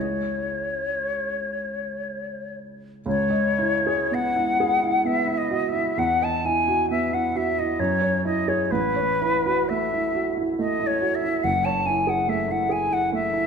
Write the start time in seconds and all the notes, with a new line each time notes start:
Already playing: C#2 G#3 E4 G#4 C#5 D#5
3.06 C#2 C#5
3.30 D#5
3.59 E4
3.87 G#4
4.11 B3 F#5
4.36 E4
4.60 G#4
4.83 E4
5.05 B3 E5
5.28 E4
5.37 D#5
5.50 F#4
5.67 E5
5.74 E4
5.97 E2 F#5
6.22 D#5 A5
6.45 E4 G#5
6.68 F#4
6.90 B3 E5
7.12 E4 F#5
7.36 F#4 E5
7.58 E4 D#5
7.79 F#2 C#5
8.02 C#5
8.25 E4 D#5
8.48 G#4 C#5
8.71 A1 B4
8.96 C#5
9.22 E4
9.46 F#4
9.68 A3 E5
9.93 E4
10.15 F#4
10.37 E4
10.58 A3 D#5
10.80 E4
10.86 C#5
11.01 F#4
11.14 E5
11.24 E4
11.43 F#1 F#5
11.64 C#5 A5
11.86 E4 G#5
12.07 G#4 F#5
12.28 A3 E5
12.48 E4 F#5
12.69 G#4 G#5
12.91 E4 F#5
13.12 A3 E5
13.33 E4